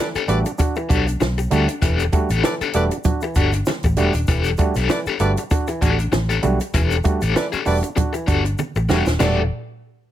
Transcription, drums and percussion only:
0.15 closed hi-hat soft
0.15 shaker medium
0.28 closed hi-hat medium
0.28 shaker medium
0.46 closed hi-hat soft
0.46 shaker medium
0.58 kick loud
0.58 closed hi-hat medium
0.58 muted conga medium
0.58 shaker medium
0.76 shaker soft
0.90 kick loud
0.90 closed hi-hat medium
0.90 muted conga soft
0.90 shaker medium
1.07 closed hi-hat medium
1.07 shaker soft
1.21 snare loud
1.21 high conga medium
1.21 shaker medium
1.38 closed hi-hat soft
1.38 shaker medium
1.51 closed hi-hat medium
1.51 high conga medium
1.51 shaker medium
1.68 closed hi-hat medium
1.68 shaker medium
1.82 kick loud
1.82 closed hi-hat medium
1.82 muted conga medium
1.82 shaker medium
1.99 closed hi-hat soft
1.99 shaker medium
2.12 kick medium
2.12 closed hi-hat medium
2.12 muted conga medium
2.12 shaker medium
2.29 closed hi-hat medium
2.29 shaker soft
2.43 snare loud
2.43 high conga medium
2.43 shaker medium
2.61 closed hi-hat soft
2.61 shaker soft
2.73 closed hi-hat medium
2.73 shaker soft
2.91 closed hi-hat soft
2.91 shaker medium
3.04 kick medium
3.04 closed hi-hat medium
3.04 muted conga medium
3.04 low conga medium
3.04 shaker medium
3.21 shaker medium
3.35 kick loud
3.35 closed hi-hat medium
3.35 shaker medium
3.52 closed hi-hat medium
3.52 shaker soft
3.66 snare loud
3.66 high conga medium
3.66 shaker medium
3.83 kick medium
3.83 closed hi-hat soft
3.83 shaker medium
3.97 closed hi-hat medium
3.97 high conga medium
3.97 shaker medium
4.13 closed hi-hat medium
4.13 shaker soft
4.27 kick loud
4.27 closed hi-hat medium
4.27 muted conga soft
4.27 shaker medium
4.44 closed hi-hat soft
4.44 shaker medium
4.57 kick loud
4.57 closed hi-hat medium
4.57 muted conga medium
4.57 shaker medium
4.74 snare soft
4.74 closed hi-hat medium
4.74 shaker medium
4.89 snare loud
4.89 high conga medium
4.89 shaker medium
5.06 shaker medium
5.20 closed hi-hat medium
5.20 shaker medium
5.37 closed hi-hat medium
5.37 shaker medium
5.50 kick loud
5.50 closed hi-hat medium
5.50 muted conga medium
5.50 shaker medium
5.67 closed hi-hat soft
5.67 shaker medium
5.81 kick medium
5.81 closed hi-hat medium
5.81 muted conga soft
5.81 shaker medium
5.99 closed hi-hat soft
5.99 shaker soft
6.13 snare loud
6.13 high conga medium
6.13 shaker medium
6.29 closed hi-hat soft
6.29 shaker medium
6.43 closed hi-hat medium
6.43 high conga medium
6.43 shaker medium
6.60 closed hi-hat medium
6.60 shaker medium
6.74 kick loud
6.74 closed hi-hat loud
6.74 muted conga medium
6.74 shaker medium
6.91 closed hi-hat soft
6.91 shaker medium
7.04 kick loud
7.04 closed hi-hat medium
7.04 muted conga medium
7.04 shaker medium
7.21 closed hi-hat medium
7.21 shaker medium
7.36 snare loud
7.36 high conga medium
7.36 shaker medium
7.53 shaker medium
7.66 open hi-hat medium
7.66 shaker medium
7.83 closed hi-hat medium
7.83 shaker medium
7.97 kick loud
7.97 closed hi-hat medium
7.97 muted conga medium
7.97 low conga medium
7.97 shaker medium
8.14 closed hi-hat soft
8.14 shaker medium
8.28 kick loud
8.28 closed hi-hat medium
8.28 shaker medium
8.45 closed hi-hat soft
8.45 shaker soft
8.58 high conga medium
8.58 shaker medium
8.76 shaker medium
8.89 snare medium
8.89 high conga medium
8.89 shaker medium
9.06 snare medium
9.06 shaker medium
9.20 snare loud
9.20 floor tom loud
9.20 crash medium
9.20 muted conga medium
9.20 shaker medium

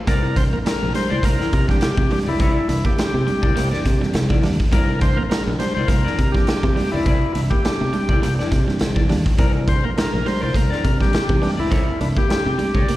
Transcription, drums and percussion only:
0.07 kick loud
0.07 closed hi-hat medium
0.36 kick medium
0.36 closed hi-hat medium
0.66 snare loud
0.66 closed hi-hat medium
0.95 snare soft
0.95 closed hi-hat medium
1.23 kick medium
1.23 closed hi-hat loud
1.41 snare soft
1.53 kick medium
1.53 closed hi-hat medium
1.69 kick medium
1.69 snare soft
1.81 snare loud
1.81 closed hi-hat medium
1.97 kick loud
2.10 open hi-hat medium
2.39 kick loud
2.39 closed hi-hat medium
2.69 closed hi-hat medium
2.85 kick medium
2.98 snare loud
2.98 closed hi-hat medium
3.27 closed hi-hat medium
3.43 kick loud
3.57 closed hi-hat loud
3.73 snare soft
3.85 kick medium
3.85 snare soft
3.85 closed hi-hat medium
4.03 snare soft
4.13 snare loud
4.13 closed hi-hat medium
4.30 kick loud
4.43 snare soft
4.43 open hi-hat medium
4.60 kick medium
4.72 kick loud
4.72 closed hi-hat loud
5.01 kick loud
5.01 closed hi-hat medium
5.31 snare loud
5.31 closed hi-hat medium
5.60 snare soft
5.60 closed hi-hat medium
5.88 kick medium
5.88 closed hi-hat loud
6.07 snare soft
6.19 kick medium
6.19 closed hi-hat medium
6.35 kick medium
6.35 snare soft
6.47 snare loud
6.47 closed hi-hat medium
6.63 kick loud
6.77 open hi-hat medium
7.06 kick loud
7.06 closed hi-hat medium
7.35 closed hi-hat medium
7.51 kick medium
7.65 snare loud
7.65 closed hi-hat medium
7.93 closed hi-hat medium
8.09 kick medium
8.23 closed hi-hat medium
8.40 snare soft
8.52 kick medium
8.52 snare soft
8.52 closed hi-hat medium
8.69 snare soft
8.79 snare loud
8.79 closed hi-hat medium
8.96 kick loud
9.09 snare soft
9.09 open hi-hat medium
9.26 kick medium
9.38 kick loud
9.38 closed hi-hat medium
9.67 kick loud
9.67 closed hi-hat medium
9.97 snare loud
9.97 closed hi-hat medium
10.26 snare soft
10.26 open hi-hat medium
10.54 kick medium
10.54 closed hi-hat loud
10.72 snare soft
10.84 kick medium
10.84 closed hi-hat medium
11.01 kick medium
11.01 snare soft
11.13 snare loud
11.13 closed hi-hat medium
11.29 kick medium
11.43 open hi-hat medium
11.72 kick loud
11.72 closed hi-hat medium
12.01 closed hi-hat medium
12.17 kick medium
12.30 snare loud
12.30 closed hi-hat medium
12.59 closed hi-hat medium
12.75 kick medium
12.88 closed hi-hat loud

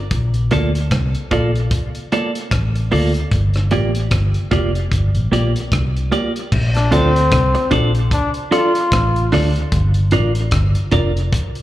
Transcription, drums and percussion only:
0.11 kick loud
0.11 closed hi-hat medium
0.34 closed hi-hat soft
0.51 closed hi-hat medium
0.75 closed hi-hat medium
0.91 kick loud
0.91 cross-stick loud
0.91 closed hi-hat medium
1.15 closed hi-hat soft
1.31 kick medium
1.31 closed hi-hat medium
1.55 closed hi-hat soft
1.71 kick loud
1.71 closed hi-hat medium
1.95 closed hi-hat soft
2.12 closed hi-hat medium
2.35 closed hi-hat medium
2.51 kick loud
2.51 cross-stick loud
2.51 closed hi-hat medium
2.75 closed hi-hat medium
2.92 open hi-hat medium
3.14 closed hi-hat medium
3.31 kick loud
3.31 closed hi-hat medium
3.54 cross-stick medium
3.54 closed hi-hat soft
3.71 closed hi-hat medium
3.95 closed hi-hat medium
4.11 kick loud
4.11 cross-stick loud
4.11 closed hi-hat medium
4.34 closed hi-hat soft
4.51 kick medium
4.51 closed hi-hat medium
4.75 closed hi-hat soft
4.92 kick loud
4.92 closed hi-hat medium
5.15 closed hi-hat soft
5.33 closed hi-hat medium
5.56 closed hi-hat medium
5.72 kick medium
5.72 cross-stick loud
5.72 closed hi-hat medium
5.96 closed hi-hat medium
6.12 closed hi-hat medium
6.36 closed hi-hat soft
6.52 kick loud
6.52 crash loud
6.74 cross-stick medium
6.74 closed hi-hat soft
6.92 closed hi-hat medium
7.16 closed hi-hat medium
7.31 kick loud
7.31 cross-stick loud
7.31 closed hi-hat medium
7.55 closed hi-hat medium
7.71 kick medium
7.71 closed hi-hat medium
7.95 closed hi-hat soft
8.11 kick loud
8.11 closed hi-hat loud
8.34 closed hi-hat soft
8.52 closed hi-hat medium
8.75 closed hi-hat medium
8.92 kick loud
8.92 cross-stick loud
8.92 closed hi-hat medium
9.16 closed hi-hat medium
9.32 cross-stick medium
9.32 open hi-hat medium
9.56 closed hi-hat medium
9.72 kick loud
9.72 closed hi-hat medium
9.94 closed hi-hat soft
10.11 closed hi-hat medium
10.35 closed hi-hat medium
10.51 kick loud
10.51 cross-stick loud
10.51 closed hi-hat medium
10.75 closed hi-hat soft
10.91 kick medium
10.91 closed hi-hat medium
11.17 closed hi-hat soft
11.33 kick loud
11.33 closed hi-hat medium
11.55 closed hi-hat soft

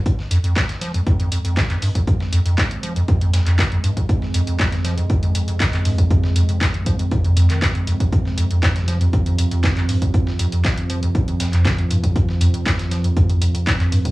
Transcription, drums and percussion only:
0.06 kick loud
0.06 closed hi-hat medium
0.19 snare soft
0.31 closed hi-hat medium
0.31 open hi-hat loud
0.44 closed hi-hat medium
0.56 kick loud
0.56 snare loud
0.56 clap loud
0.56 closed hi-hat medium
0.69 snare medium
0.69 closed hi-hat medium
0.81 snare soft
0.81 closed hi-hat medium
0.81 open hi-hat medium
0.94 closed hi-hat medium
1.07 kick loud
1.07 closed hi-hat medium
1.20 closed hi-hat medium
1.32 closed hi-hat medium
1.32 open hi-hat loud
1.45 closed hi-hat soft
1.45 closed hi-hat medium
1.57 kick loud
1.57 snare loud
1.57 clap loud
1.57 closed hi-hat medium
1.70 clap soft
1.70 closed hi-hat soft
1.82 open hi-hat medium
1.95 kick medium
1.95 closed hi-hat medium
2.07 kick loud
2.07 closed hi-hat medium
2.20 snare medium
2.33 closed hi-hat medium
2.33 open hi-hat loud
2.46 closed hi-hat soft
2.46 closed hi-hat medium
2.58 kick loud
2.58 snare loud
2.58 clap loud
2.58 closed hi-hat medium
2.71 closed hi-hat medium
2.83 closed hi-hat medium
2.83 open hi-hat medium
2.96 closed hi-hat medium
3.08 kick loud
3.08 closed hi-hat medium
3.21 closed hi-hat medium
3.33 snare loud
3.33 closed hi-hat medium
3.33 open hi-hat loud
3.46 clap soft
3.46 closed hi-hat soft
3.46 closed hi-hat medium
3.59 kick loud
3.59 snare loud
3.59 clap loud
3.59 closed hi-hat medium
3.72 closed hi-hat soft
3.84 closed hi-hat medium
3.84 open hi-hat medium
3.97 kick medium
3.97 closed hi-hat medium
4.09 kick loud
4.09 closed hi-hat medium
4.22 snare soft
4.34 closed hi-hat medium
4.34 open hi-hat loud
4.47 closed hi-hat medium
4.59 kick loud
4.59 snare loud
4.59 clap loud
4.59 closed hi-hat medium
4.72 snare medium
4.72 closed hi-hat soft
4.85 snare soft
4.85 closed hi-hat medium
4.85 open hi-hat medium
4.98 closed hi-hat medium
5.10 kick loud
5.10 closed hi-hat medium
5.23 closed hi-hat medium
5.35 closed hi-hat medium
5.35 open hi-hat loud
5.48 closed hi-hat soft
5.48 closed hi-hat medium
5.60 kick loud
5.60 snare loud
5.60 clap loud
5.60 closed hi-hat medium
5.73 clap soft
5.73 closed hi-hat soft
5.85 open hi-hat loud
5.85 open hi-hat medium
5.98 kick medium
5.98 closed hi-hat medium
6.11 kick loud
6.11 closed hi-hat medium
6.24 snare medium
6.36 closed hi-hat medium
6.36 open hi-hat loud
6.49 closed hi-hat soft
6.49 closed hi-hat medium
6.61 kick loud
6.61 snare loud
6.61 clap loud
6.61 closed hi-hat medium
6.74 closed hi-hat soft
6.86 kick medium
6.86 closed hi-hat medium
6.86 open hi-hat medium
6.99 closed hi-hat medium
7.11 kick loud
7.11 closed hi-hat medium
7.25 closed hi-hat soft
7.37 closed hi-hat medium
7.37 open hi-hat loud
7.50 clap soft
7.50 closed hi-hat soft
7.50 closed hi-hat medium
7.62 kick loud
7.62 snare loud
7.62 clap loud
7.62 closed hi-hat medium
7.75 closed hi-hat soft
7.87 closed hi-hat medium
7.87 open hi-hat medium
8.00 kick medium
8.00 closed hi-hat medium
8.12 kick loud
8.12 closed hi-hat medium
8.25 snare soft
8.38 closed hi-hat medium
8.38 open hi-hat loud
8.51 closed hi-hat medium
8.63 kick loud
8.63 snare loud
8.63 clap loud
8.63 closed hi-hat medium
8.76 snare medium
8.76 closed hi-hat soft
8.88 snare soft
8.88 closed hi-hat medium
8.88 open hi-hat medium
9.01 closed hi-hat medium
9.13 kick loud
9.13 closed hi-hat medium
9.26 closed hi-hat medium
9.38 closed hi-hat medium
9.38 open hi-hat loud
9.51 closed hi-hat soft
9.51 closed hi-hat medium
9.63 kick loud
9.63 snare loud
9.63 clap loud
9.63 closed hi-hat medium
9.77 clap soft
9.77 closed hi-hat soft
9.89 open hi-hat medium
10.02 kick medium
10.02 closed hi-hat medium
10.14 kick loud
10.14 closed hi-hat medium
10.27 snare medium
10.39 closed hi-hat medium
10.39 open hi-hat loud
10.52 closed hi-hat soft
10.52 closed hi-hat medium
10.65 kick loud
10.65 snare loud
10.65 clap loud
10.65 closed hi-hat medium
10.78 closed hi-hat soft
10.90 closed hi-hat medium
10.90 open hi-hat medium
11.03 closed hi-hat medium
11.15 kick loud
11.15 closed hi-hat medium
11.28 closed hi-hat medium
11.40 snare loud
11.40 closed hi-hat medium
11.40 open hi-hat loud
11.53 clap soft
11.53 closed hi-hat soft
11.53 closed hi-hat medium
11.65 kick loud
11.65 snare loud
11.65 clap loud
11.65 closed hi-hat medium
11.79 closed hi-hat soft
11.91 closed hi-hat medium
11.91 open hi-hat medium
12.04 kick medium
12.04 closed hi-hat medium
12.16 kick loud
12.16 closed hi-hat medium
12.29 snare soft
12.41 closed hi-hat medium
12.41 open hi-hat loud
12.54 closed hi-hat medium
12.66 kick loud
12.66 snare loud
12.66 clap loud
12.66 closed hi-hat medium
12.79 snare medium
12.79 closed hi-hat medium
12.91 snare medium
12.91 closed hi-hat medium
12.91 open hi-hat medium
13.04 closed hi-hat medium
13.17 kick loud
13.17 closed hi-hat medium
13.29 closed hi-hat medium
13.42 closed hi-hat medium
13.42 open hi-hat loud
13.55 closed hi-hat soft
13.55 closed hi-hat medium
13.67 kick loud
13.67 snare loud
13.67 clap loud
13.67 closed hi-hat medium
13.80 clap soft
13.80 closed hi-hat soft
13.92 open hi-hat medium
14.05 kick medium
14.05 closed hi-hat medium

